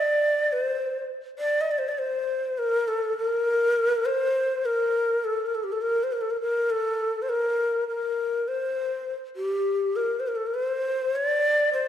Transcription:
0, 0, Header, 1, 2, 480
1, 0, Start_track
1, 0, Tempo, 500000
1, 11407, End_track
2, 0, Start_track
2, 0, Title_t, "Ney"
2, 0, Program_c, 0, 77
2, 0, Note_on_c, 0, 74, 88
2, 505, Note_on_c, 0, 72, 83
2, 520, Note_off_c, 0, 74, 0
2, 1061, Note_off_c, 0, 72, 0
2, 1332, Note_on_c, 0, 74, 91
2, 1545, Note_on_c, 0, 75, 78
2, 1559, Note_off_c, 0, 74, 0
2, 1643, Note_on_c, 0, 74, 82
2, 1658, Note_off_c, 0, 75, 0
2, 1714, Note_on_c, 0, 72, 78
2, 1728, Note_off_c, 0, 74, 0
2, 1810, Note_on_c, 0, 74, 79
2, 1825, Note_off_c, 0, 72, 0
2, 1839, Note_off_c, 0, 74, 0
2, 1839, Note_on_c, 0, 74, 63
2, 1906, Note_on_c, 0, 72, 80
2, 1920, Note_off_c, 0, 74, 0
2, 2479, Note_on_c, 0, 70, 87
2, 2494, Note_off_c, 0, 72, 0
2, 2763, Note_on_c, 0, 69, 78
2, 2777, Note_off_c, 0, 70, 0
2, 3043, Note_off_c, 0, 69, 0
2, 3048, Note_on_c, 0, 70, 82
2, 3893, Note_on_c, 0, 72, 89
2, 3907, Note_off_c, 0, 70, 0
2, 4466, Note_on_c, 0, 70, 82
2, 4481, Note_off_c, 0, 72, 0
2, 5036, Note_on_c, 0, 69, 77
2, 5051, Note_off_c, 0, 70, 0
2, 5243, Note_on_c, 0, 70, 67
2, 5257, Note_off_c, 0, 69, 0
2, 5327, Note_on_c, 0, 69, 66
2, 5341, Note_off_c, 0, 70, 0
2, 5411, Note_on_c, 0, 67, 64
2, 5425, Note_off_c, 0, 69, 0
2, 5493, Note_on_c, 0, 69, 70
2, 5508, Note_off_c, 0, 67, 0
2, 5584, Note_on_c, 0, 70, 80
2, 5598, Note_off_c, 0, 69, 0
2, 5793, Note_on_c, 0, 72, 59
2, 5807, Note_off_c, 0, 70, 0
2, 5881, Note_on_c, 0, 70, 66
2, 5895, Note_off_c, 0, 72, 0
2, 5964, Note_on_c, 0, 69, 65
2, 5978, Note_off_c, 0, 70, 0
2, 6052, Note_on_c, 0, 70, 66
2, 6066, Note_off_c, 0, 69, 0
2, 6145, Note_off_c, 0, 70, 0
2, 6150, Note_on_c, 0, 70, 73
2, 6436, Note_on_c, 0, 69, 83
2, 6450, Note_off_c, 0, 70, 0
2, 6932, Note_on_c, 0, 72, 57
2, 6947, Note_off_c, 0, 69, 0
2, 6999, Note_on_c, 0, 70, 78
2, 7013, Note_off_c, 0, 72, 0
2, 7560, Note_off_c, 0, 70, 0
2, 7566, Note_on_c, 0, 70, 79
2, 8139, Note_on_c, 0, 72, 75
2, 8153, Note_off_c, 0, 70, 0
2, 8780, Note_off_c, 0, 72, 0
2, 8987, Note_on_c, 0, 67, 83
2, 9562, Note_on_c, 0, 70, 83
2, 9577, Note_off_c, 0, 67, 0
2, 9789, Note_on_c, 0, 72, 74
2, 9804, Note_off_c, 0, 70, 0
2, 9867, Note_on_c, 0, 70, 65
2, 9881, Note_off_c, 0, 72, 0
2, 9943, Note_on_c, 0, 69, 67
2, 9958, Note_off_c, 0, 70, 0
2, 10047, Note_on_c, 0, 70, 70
2, 10061, Note_off_c, 0, 69, 0
2, 10123, Note_on_c, 0, 72, 95
2, 10138, Note_off_c, 0, 70, 0
2, 10711, Note_on_c, 0, 74, 104
2, 10725, Note_off_c, 0, 72, 0
2, 11257, Note_off_c, 0, 74, 0
2, 11263, Note_on_c, 0, 72, 87
2, 11407, Note_off_c, 0, 72, 0
2, 11407, End_track
0, 0, End_of_file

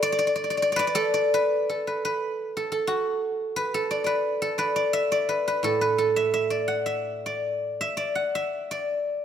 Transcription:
0, 0, Header, 1, 2, 480
1, 0, Start_track
1, 0, Tempo, 735294
1, 24, Time_signature, 2, 2, 24, 8
1, 984, Tempo, 693642
1, 3864, Tempo, 720288
1, 6250, End_track
2, 0, Start_track
2, 0, Title_t, "Guzheng"
2, 0, Program_c, 0, 107
2, 0, Note_on_c, 0, 69, 106
2, 0, Note_on_c, 0, 71, 103
2, 16, Note_on_c, 0, 74, 121
2, 78, Note_off_c, 0, 74, 0
2, 81, Note_on_c, 0, 74, 84
2, 119, Note_off_c, 0, 74, 0
2, 122, Note_on_c, 0, 74, 93
2, 173, Note_off_c, 0, 74, 0
2, 176, Note_on_c, 0, 74, 68
2, 230, Note_off_c, 0, 74, 0
2, 232, Note_on_c, 0, 74, 77
2, 284, Note_off_c, 0, 74, 0
2, 287, Note_on_c, 0, 74, 58
2, 325, Note_off_c, 0, 74, 0
2, 328, Note_on_c, 0, 74, 72
2, 371, Note_off_c, 0, 74, 0
2, 374, Note_on_c, 0, 74, 59
2, 404, Note_off_c, 0, 74, 0
2, 406, Note_on_c, 0, 74, 81
2, 468, Note_off_c, 0, 74, 0
2, 470, Note_on_c, 0, 74, 70
2, 494, Note_off_c, 0, 71, 0
2, 497, Note_on_c, 0, 71, 103
2, 513, Note_off_c, 0, 74, 0
2, 516, Note_on_c, 0, 74, 93
2, 567, Note_off_c, 0, 74, 0
2, 569, Note_on_c, 0, 74, 73
2, 617, Note_off_c, 0, 69, 0
2, 619, Note_on_c, 0, 69, 100
2, 620, Note_off_c, 0, 74, 0
2, 623, Note_on_c, 0, 74, 92
2, 740, Note_off_c, 0, 74, 0
2, 743, Note_on_c, 0, 74, 94
2, 872, Note_off_c, 0, 71, 0
2, 874, Note_on_c, 0, 71, 95
2, 1111, Note_off_c, 0, 69, 0
2, 1114, Note_on_c, 0, 69, 59
2, 1234, Note_off_c, 0, 71, 0
2, 1237, Note_on_c, 0, 71, 58
2, 1355, Note_off_c, 0, 71, 0
2, 1358, Note_on_c, 0, 71, 68
2, 1715, Note_off_c, 0, 69, 0
2, 1717, Note_on_c, 0, 69, 61
2, 1819, Note_off_c, 0, 69, 0
2, 1822, Note_on_c, 0, 69, 68
2, 1930, Note_on_c, 0, 66, 75
2, 2007, Note_off_c, 0, 74, 0
2, 2403, Note_off_c, 0, 71, 0
2, 2406, Note_on_c, 0, 71, 84
2, 2528, Note_off_c, 0, 69, 0
2, 2531, Note_on_c, 0, 69, 75
2, 2644, Note_on_c, 0, 74, 71
2, 2735, Note_off_c, 0, 74, 0
2, 2738, Note_on_c, 0, 74, 49
2, 2750, Note_off_c, 0, 71, 0
2, 2753, Note_on_c, 0, 71, 76
2, 2995, Note_off_c, 0, 69, 0
2, 2998, Note_on_c, 0, 69, 75
2, 3107, Note_off_c, 0, 74, 0
2, 3110, Note_on_c, 0, 74, 56
2, 3112, Note_off_c, 0, 71, 0
2, 3114, Note_on_c, 0, 71, 74
2, 3231, Note_off_c, 0, 74, 0
2, 3234, Note_on_c, 0, 74, 82
2, 3354, Note_on_c, 0, 76, 94
2, 3480, Note_off_c, 0, 74, 0
2, 3482, Note_on_c, 0, 74, 78
2, 3598, Note_off_c, 0, 71, 0
2, 3600, Note_on_c, 0, 71, 74
2, 3611, Note_off_c, 0, 66, 0
2, 3727, Note_off_c, 0, 71, 0
2, 3730, Note_on_c, 0, 71, 75
2, 3836, Note_on_c, 0, 45, 50
2, 3842, Note_off_c, 0, 69, 0
2, 3845, Note_on_c, 0, 69, 85
2, 3957, Note_off_c, 0, 71, 0
2, 3960, Note_on_c, 0, 71, 71
2, 4071, Note_off_c, 0, 69, 0
2, 4073, Note_on_c, 0, 69, 67
2, 4191, Note_off_c, 0, 76, 0
2, 4193, Note_on_c, 0, 76, 71
2, 4306, Note_off_c, 0, 76, 0
2, 4308, Note_on_c, 0, 76, 78
2, 4417, Note_off_c, 0, 74, 0
2, 4420, Note_on_c, 0, 74, 72
2, 4536, Note_on_c, 0, 78, 70
2, 4654, Note_off_c, 0, 76, 0
2, 4657, Note_on_c, 0, 76, 71
2, 4921, Note_off_c, 0, 74, 0
2, 4924, Note_on_c, 0, 74, 65
2, 5286, Note_off_c, 0, 76, 0
2, 5289, Note_on_c, 0, 76, 80
2, 5306, Note_off_c, 0, 45, 0
2, 5322, Note_off_c, 0, 71, 0
2, 5394, Note_off_c, 0, 74, 0
2, 5397, Note_on_c, 0, 74, 73
2, 5517, Note_off_c, 0, 78, 0
2, 5520, Note_on_c, 0, 78, 67
2, 5536, Note_off_c, 0, 69, 0
2, 5648, Note_off_c, 0, 76, 0
2, 5651, Note_on_c, 0, 76, 73
2, 5888, Note_off_c, 0, 74, 0
2, 5890, Note_on_c, 0, 74, 68
2, 6250, Note_off_c, 0, 74, 0
2, 6250, Note_off_c, 0, 76, 0
2, 6250, Note_off_c, 0, 78, 0
2, 6250, End_track
0, 0, End_of_file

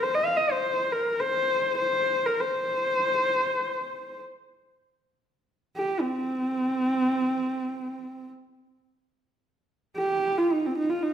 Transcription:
0, 0, Header, 1, 2, 480
1, 0, Start_track
1, 0, Tempo, 500000
1, 10690, End_track
2, 0, Start_track
2, 0, Title_t, "Horsehead fiddle"
2, 0, Program_c, 0, 110
2, 30, Note_on_c, 0, 72, 78
2, 143, Note_on_c, 0, 75, 83
2, 158, Note_off_c, 0, 72, 0
2, 248, Note_on_c, 0, 77, 80
2, 263, Note_off_c, 0, 75, 0
2, 353, Note_on_c, 0, 75, 76
2, 368, Note_off_c, 0, 77, 0
2, 492, Note_on_c, 0, 72, 76
2, 506, Note_off_c, 0, 75, 0
2, 889, Note_on_c, 0, 70, 72
2, 903, Note_off_c, 0, 72, 0
2, 1155, Note_on_c, 0, 72, 86
2, 1169, Note_off_c, 0, 70, 0
2, 1707, Note_off_c, 0, 72, 0
2, 1713, Note_on_c, 0, 72, 81
2, 2170, Note_on_c, 0, 70, 71
2, 2184, Note_off_c, 0, 72, 0
2, 2309, Note_on_c, 0, 72, 83
2, 2324, Note_off_c, 0, 70, 0
2, 4029, Note_off_c, 0, 72, 0
2, 5536, Note_on_c, 0, 67, 79
2, 5769, Note_on_c, 0, 60, 82
2, 5784, Note_off_c, 0, 67, 0
2, 7963, Note_off_c, 0, 60, 0
2, 9572, Note_on_c, 0, 67, 83
2, 9967, Note_on_c, 0, 65, 80
2, 9982, Note_off_c, 0, 67, 0
2, 10109, Note_on_c, 0, 63, 71
2, 10123, Note_off_c, 0, 65, 0
2, 10238, Note_on_c, 0, 60, 67
2, 10253, Note_off_c, 0, 63, 0
2, 10342, Note_off_c, 0, 60, 0
2, 10348, Note_on_c, 0, 63, 74
2, 10463, Note_on_c, 0, 65, 73
2, 10478, Note_off_c, 0, 63, 0
2, 10590, Note_on_c, 0, 63, 69
2, 10604, Note_off_c, 0, 65, 0
2, 10690, Note_off_c, 0, 63, 0
2, 10690, End_track
0, 0, End_of_file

